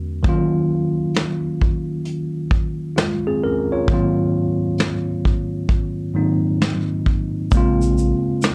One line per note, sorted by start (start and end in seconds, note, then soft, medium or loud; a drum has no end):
0.00 0.19 E2 medium
0.00 0.20 D3 medium
0.00 0.21 G#3 medium
0.00 0.21 B3 medium
0.00 0.22 C#4 medium
0.00 0.22 F#4 medium
0.23 3.83 D#3 medium
0.23 3.84 F#3 medium
0.23 2.94 A#3 medium
0.23 kick loud
0.23 closed hi-hat medium
0.27 2.95 C#4 medium
0.27 2.95 F4 medium
1.14 snare medium
1.14 closed hi-hat medium
1.61 kick medium
2.05 closed hi-hat medium
2.51 kick medium
2.96 3.25 G#3 soft
2.96 3.25 F4 medium
2.96 snare loud
2.96 closed hi-hat medium
3.27 3.42 C4 medium
3.27 3.42 G#4 medium
3.43 3.72 C#4 medium
3.43 3.71 A#4 medium
3.72 3.92 F4 medium
3.72 4.15 C#5 medium
3.87 6.11 G#2 medium
3.87 6.12 D#3 medium
3.87 6.12 F#3 medium
3.87 6.13 A#3 medium
3.87 kick loud
3.87 closed hi-hat medium
3.92 6.13 C4 medium
3.92 6.14 F4 medium
4.78 snare loud
4.78 closed hi-hat medium
5.25 kick medium
5.69 kick medium
5.69 closed hi-hat medium
6.14 7.51 G#2 medium
6.14 7.51 D#3 soft
6.14 7.52 F#3 soft
6.14 7.52 A#3 medium
6.14 7.52 C4 medium
6.14 7.52 D#4 medium
6.61 snare loud
6.61 closed hi-hat medium
7.06 kick medium
7.51 8.14 A#1 loud
7.51 8.55 C#3 medium
7.51 8.55 G#3 medium
7.51 8.55 A#3 medium
7.51 kick loud
7.51 closed hi-hat medium
7.51 shaker medium
7.55 8.55 C4 medium
7.55 8.55 F4 medium
7.82 shaker soft
7.98 shaker soft
8.42 snare loud
8.42 closed hi-hat medium
8.42 shaker medium